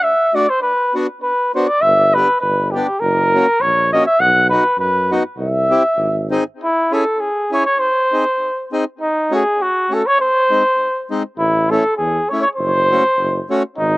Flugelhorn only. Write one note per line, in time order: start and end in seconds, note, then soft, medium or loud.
0.03 0.37 E5 medium
0.35 0.51 D5 medium
0.49 0.62 C5 loud
0.62 0.95 B4 medium
1.22 1.53 B4 medium
1.55 1.69 C5 medium
1.67 1.83 D5 loud
1.82 2.16 E5 loud
2.14 2.40 B4 loud
2.41 2.73 B4 medium
2.71 3.02 G4 medium
3.00 3.62 A#4 medium
3.61 3.92 C#5 medium
3.93 4.05 D#5 medium
4.06 4.22 E5 loud
4.20 4.49 F#5 loud
4.50 4.76 B4 medium
4.80 5.12 B4 medium
5.40 6.28 E5 medium
6.63 6.95 E4 medium
6.93 7.22 A4 medium
7.20 7.53 G#4 medium
7.54 7.65 C#5 medium
7.65 7.81 C#5 loud
7.79 8.72 C5 medium
9.01 9.30 D#4 medium
9.35 9.63 G#4 medium
9.62 9.95 F#4 medium
9.94 10.08 A4 medium
10.07 10.19 C#5 loud
10.21 11.08 C5 loud
11.39 11.72 E4 medium
11.71 11.96 A4 medium
11.97 12.31 G#4 medium
12.29 12.42 C#5 medium
12.42 12.49 C#5 medium
12.56 13.45 C5 loud
13.78 13.98 D#4 medium